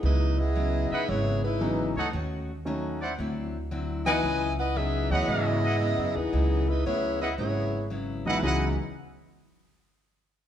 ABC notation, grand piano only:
X:1
M:4/4
L:1/8
Q:"Swing" 1/4=114
K:C#m
V:1 name="Grand piano" clef=bass
z6 [E,F,B,D] z | z2 [F,A,CD] z4 [E,F,B,D] | z3 [E,F,B,d]3 z2 | z6 z [C,,E,F,B,D] |
[E,F,G,B,D] z6 z |]